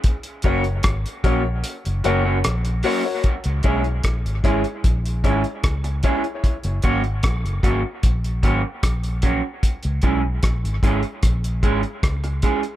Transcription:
<<
  \new Staff \with { instrumentName = "Upright piano" } { \time 4/4 \key cis \dorian \tempo 4 = 75 r8 <fis' ais' cis''>16 r8. <fis' ais' cis''>16 r8. <fis' ais' cis''>16 r8. <fis' ais' cis''>16 <fis' ais' cis''>16 | r8 <e' gis' cis''>16 r8. <e' gis' cis''>16 r8. <e' gis' cis''>16 r8. <e' gis' cis''>16 r16 | r1 | r1 | }
  \new Staff \with { instrumentName = "Clean electric guitar" } { \time 4/4 \key cis \dorian r8 <fis ais cis' fis'>16 r8. <fis ais cis' fis'>16 r8. <fis ais cis' fis'>16 <fis ais cis' fis'>16 r8 <fis ais cis' fis'>16 r16 | r8 <gis cis' e' gis'>16 r8. <gis cis' e' gis'>16 r8. <gis cis' e' gis'>16 r8. <gis cis' e' gis'>16 r16 | r8 <fis ais cis' fis'>16 r8. <fis ais cis' fis'>16 r8. <fis ais cis' fis'>16 r8. <fis ais cis' fis'>16 r16 | r8 <gis cis' e' gis'>16 r8. <gis cis' e' gis'>16 r8. <gis cis' e' gis'>16 r8. <gis cis' e' gis'>16 r16 | }
  \new Staff \with { instrumentName = "Fingered electric bass" } { \clef bass \time 4/4 \key cis \dorian r8 fis,,8 gis,,16 r16 ais,,8 r16 fis,,16 fis,,8 ais,,8 r8 | r16 cis,16 b,,8 ais,,16 gis,,16 gis,,16 r16 ais,,8 gis,,16 r16 cis,8 r8 | r16 fis,,16 gis,,8 ais,,16 fis,,16 gis,,16 r16 ais,,8 gis,,16 r16 ais,,8. r16 | r16 cis,16 b,,8 ais,,16 gis,,16 gis,,16 r16 ais,,8 gis,,16 r16 cis,8 r8 | }
  \new DrumStaff \with { instrumentName = "Drums" } \drummode { \time 4/4 <hh bd>16 hh16 <hh bd>16 hh16 <hh bd ss>16 hh16 <hh bd>8 hh16 hh16 hh8 <hh ss>16 hh16 hho8 | <hh bd>16 hh16 <hh bd>16 hh16 <hh bd ss>16 hh16 <hh bd>16 hh16 <hh bd>16 hh16 <hh bd>16 hh16 <hh bd ss>16 hh16 <hh bd>16 hh16 | <hh bd>16 hh16 <hh bd>16 hh16 <hh bd ss>16 hh16 <hh bd>8 <hh bd>16 hh16 <hh bd>8 <hh bd ss>16 hh16 <hh bd>8 | <hh bd>16 hh16 <hh bd>8 <hh bd ss>16 hh16 <hh bd>16 hh16 <hh bd ss>16 hh16 <hh bd>16 hh16 <hh bd ss>16 hh16 <hh bd>16 hh16 | }
>>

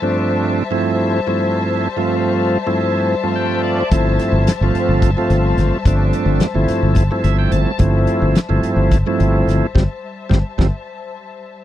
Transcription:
<<
  \new Staff \with { instrumentName = "String section" } { \time 7/8 \key c \dorian \tempo 4 = 108 <g c'' e'' a''>2.~ <g c'' e'' a''>8~ | <g c'' e'' a''>2.~ <g c'' e'' a''>8~ | <g c'' e'' a''>2.~ <g c'' e'' a''>8~ | <g c'' e'' a''>2.~ <g c'' e'' a''>8~ |
<g c'' e'' a''>2.~ <g c'' e'' a''>8~ | <g c'' e'' a''>2.~ <g c'' e'' a''>8 | }
  \new Staff \with { instrumentName = "Tonewheel organ" } { \time 7/8 \key c \dorian r2. r8 | r2 r8 g''8 d''8 | r2. r8 | r2 r8 e''16 g''16 a''8 |
r2. r8 | <f g c'>8 r8 <f g c'>8 <f g c'>8 r4. | }
  \new Staff \with { instrumentName = "Tonewheel organ" } { \time 7/8 \key c \dorian <g, f a c' d'>4 r16 <g, f a c' e'>8. r16 <g, f a c' e'>4 r16 | <g, f a c' f'>4 r16 <g, f a c' e'>8. r16 <g, f a c' f'>4 r16 | <g, f a c' e'>4 r16 <g, f a c' f'>8. r16 <g, f a c' f'>4 r16 | <g, f a c' d'>4 r16 <g, f a c' e'>8. r16 <g, f a c' e'>4 r16 |
<g, f a c' e'>4 r16 <g, f a c' e'>8. r16 <g, f a c' e'>4 r16 | r2. r8 | }
  \new Staff \with { instrumentName = "Fretless electric bass" } { \clef bass \time 7/8 \key c \dorian r2. r8 | r2. r8 | g,,8 r16 g,,16 r16 g,,16 r16 g,,8 r16 g,,8 g,,16 r16 | g,,8 r16 g,,16 r16 g,,16 r16 g,,8 r16 g,,8 g,,16 r16 |
g,,8 r16 g,,16 r16 g,,16 r16 g,,8 r16 g,,8 g,,16 r16 | g,,16 r8. g,,16 r16 g,,16 r4. r16 | }
  \new DrumStaff \with { instrumentName = "Drums" } \drummode { \time 7/8 r4 r4 r4. | r4 r4 r4. | <hh bd>8 <hh sn>8 <hh sn>8 hh8 <hh bd>8 <hh sn>8 <hh sn>8 | <hh bd>8 hh8 <hh sn>8 <hh sn>8 <hh bd>8 <hh sn>8 hh8 |
<hh bd>8 hh8 <hh sn>8 hh8 <hh bd sn>8 hh8 <hh sn>8 | <bd sn>4 <bd sn>8 <bd sn>8 r4. | }
>>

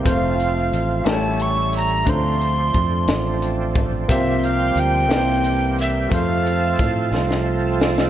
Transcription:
<<
  \new Staff \with { instrumentName = "Recorder" } { \time 6/8 \key f \major \tempo 4. = 59 f''4. a''8 cis'''8 bes''8 | c'''2 r4 | e''8 f''8 g''4. e''8 | f''2 r4 | }
  \new Staff \with { instrumentName = "Grand piano" } { \time 6/8 \key f \major <a c' f' c''>4. <a e' g' bes' cis''>4. | <a d' f' c''>2. | <bes f' g' c''>4. <bes e' g' b' c''>4. | <a c' f' c''>2. | }
  \new Staff \with { instrumentName = "Grand piano" } { \clef bass \time 6/8 \key f \major r4. a,4. | d4. r4. | c4. c4. | r2. | }
  \new Staff \with { instrumentName = "Tonewheel organ" } { \time 6/8 \key f \major <c' f'>4. <cis' e'>4. | <c' d'>2. | <bes g'>2. | <f' a'>2. | }
  \new Staff \with { instrumentName = "Tonewheel organ" } { \clef bass \time 6/8 \key f \major << { a4. a4.~ | a2. | g4. g4. | a2. | } \\ { f4. g4. | f2.~ | f4. e4. | f2. | } >> }
  \new Staff \with { instrumentName = "Fingered electric bass" } { \clef bass \time 6/8 \key f \major f,,4 a,,8 a,,4. | d,4 f,8 a,,4. | c,4 d,8 c,4. | f,4 a,8 c,4. | }
  \new DrumStaff \with { instrumentName = "Drums" } \drummode { \time 6/8 <hh bd>8 hh8 hh8 <hh sn>8 hh8 hh8 | <hh bd>8 hh8 <hh bd>8 <hh sn>8 hh8 <hh bd>8 | <hh bd>8 hh8 hh8 <hh sn>8 hh8 hh8 | <hh bd>8 hh8 <hh bd>8 sn16 sn8. sn16 sn16 | }
>>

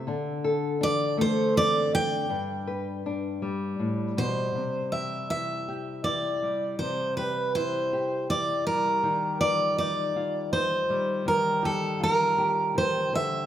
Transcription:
<<
  \new Staff \with { instrumentName = "Steel-string acoustic guitar" } { \time 3/4 \key c \lydian \tempo 4 = 80 r4 d''8 c''8 d''8 g''8~ | g''2~ g''8 c''8~ | c''8 e''8 e''4 d''4 | c''8 b'8 c''4 d''8 bes'8~ |
bes'8 d''8 d''4 c''4 | bes'8 a'8 bes'4 c''8 e''8 | }
  \new Staff \with { instrumentName = "Nylon-string guitar" } { \time 3/4 \key c \lydian << { d'8 a'8 d'8 a'8 c'8 d'8 | d'8 b'8 d'2~ | d'8 g'8 e'8 g'8 e'4 | r8 g'8 e'8 g'8 e'4 |
r8 f'8 ees'8 f'8 ees'4 | r8 g'8 f'8 g'4. | } \\ { d4. a4. | g,4. g8 a,8 b,8 | c2~ c8 g8 | c2~ c8 g8 |
ees2~ ees8 g8 | ees2 ees8 d8 | } >> }
>>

